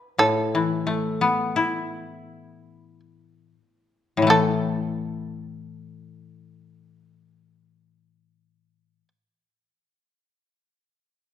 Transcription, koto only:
0.18 3.56 A2 soft
0.55 3.52 E3 soft
0.87 3.91 A3 soft
1.21 4.30 B3 soft
1.56 4.69 E4 soft
4.17 8.99 A2 soft
4.22 9.04 E3 soft
4.27 9.09 A3 soft

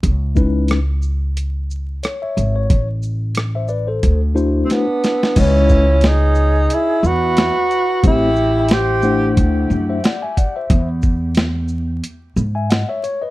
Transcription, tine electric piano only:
0.35 0.77 G#3 medium
0.35 0.77 C#4 medium
0.35 0.77 D#4 medium
0.35 0.77 E4 medium
0.35 0.78 B4 medium
2.03 2.21 C#5 medium
2.22 2.54 C#5 medium
2.22 2.54 E5 medium
2.56 2.87 C#5 medium
3.55 3.69 C5 soft
3.55 3.69 E5 medium
3.69 3.88 B4 medium
3.69 3.87 D5 medium
3.87 4.20 A4 medium
3.87 4.20 C5 medium
4.35 4.84 A3 medium
4.35 4.84 D4 medium
4.35 4.85 E4 medium
4.35 4.84 F#4 medium
4.35 4.85 C5 medium
5.36 5.85 G#3 medium
5.36 5.85 C#4 medium
5.36 5.86 E4 medium
5.36 5.86 B4 medium
5.36 5.85 D#5 medium
8.03 8.28 A3 medium
8.03 8.28 C4 medium
8.03 8.28 E4 medium
8.03 8.28 G4 medium
8.03 8.29 C5 medium
9.03 9.97 A3 medium
9.03 9.98 D4 medium
9.03 9.98 E4 medium
9.03 9.70 C5 medium
9.03 9.98 F#5 medium
9.89 10.03 C5 medium
9.89 10.03 E5 medium
10.04 10.22 D5 medium
10.04 10.22 F#5 medium
10.22 10.36 E5 medium
10.22 10.36 G#5 medium
10.37 10.55 D5 medium
10.37 10.55 F#5 medium
10.56 10.88 C5 medium
10.56 10.87 E5 medium
12.55 12.69 E5 medium
12.55 12.69 G#5 medium
12.70 12.88 D#5 medium
12.70 12.88 F#5 medium
12.89 13.02 C#5 medium
12.89 13.02 E5 medium
13.04 13.22 C#5 medium
13.22 13.30 B4 medium
13.22 13.30 D#5 medium

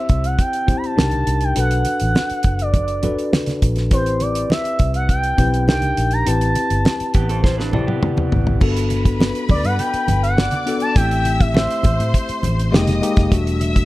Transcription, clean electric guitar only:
7.15 7.29 B3 soft
7.15 7.28 G4 medium
7.29 7.43 C4 medium
7.29 7.43 A4 medium
7.44 7.58 E4 medium
7.44 7.58 C5 medium
7.58 7.72 D4 medium
7.58 7.72 B4 medium
7.73 7.87 C4 medium
7.73 7.87 A4 medium
7.87 8.58 B3 soft
7.87 8.57 G4 medium

